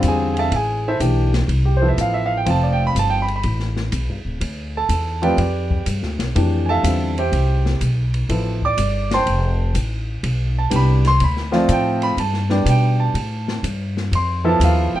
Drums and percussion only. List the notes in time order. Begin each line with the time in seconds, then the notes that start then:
0.03 hi-hat pedal, ride
0.37 ride
0.52 ride
1.00 hi-hat pedal, ride
1.34 snare, ride
1.49 ride
1.98 hi-hat pedal, ride
2.46 ride
2.96 hi-hat pedal, ride
3.28 ride
3.43 ride
3.60 snare
3.76 snare
3.92 hi-hat pedal, ride
4.41 ride
4.89 hi-hat pedal, ride
5.23 ride
5.38 ride
5.71 kick
5.86 hi-hat pedal, ride
6.03 snare
6.19 snare, ride
6.36 ride
6.84 hi-hat pedal, ride
7.18 ride
7.33 ride
7.66 snare
7.81 hi-hat pedal, ride
8.14 ride
8.29 ride
8.62 kick
8.78 hi-hat pedal, ride
9.11 snare, ride
9.27 ride
9.75 hi-hat pedal, ride
10.24 ride
10.71 hi-hat pedal, ride
11.04 snare, ride
11.20 ride
11.37 snare
11.53 snare
11.69 hi-hat pedal, ride
12.02 ride
12.18 ride
12.34 snare
12.50 snare
12.66 hi-hat pedal, ride
13.15 ride
13.48 snare
13.64 hi-hat pedal, ride
13.97 snare
14.13 ride
14.61 hi-hat pedal, ride